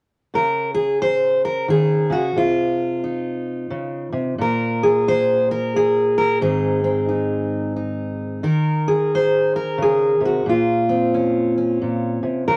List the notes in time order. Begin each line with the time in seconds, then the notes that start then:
0.34 C#3 A#4
0.74 G#4
1.02 C5
1.45 A#4
1.68 D#3 G#4
2.10 C#3 F#4
2.36 C3 F4
3.04 D#4
3.70 C#3
4.13 C3
4.38 A#2 A#4
4.83 G#4
5.08 C5
5.51 A#4
5.76 G#4
6.18 A#4
6.41 G#2 D#3 C4 D#4 G#4
6.84 C4
7.09 D#4
7.76 D#4
8.43 D#3 A#4
8.88 G#4
9.15 C5
9.56 A#4
9.78 C#3
9.82 G#4
10.20 C3
10.25 F#4
10.46 A#2 F4
10.89 C4
11.14 C#4
11.58 C#4
11.82 A#2
12.23 C3
12.48 C#3 A#4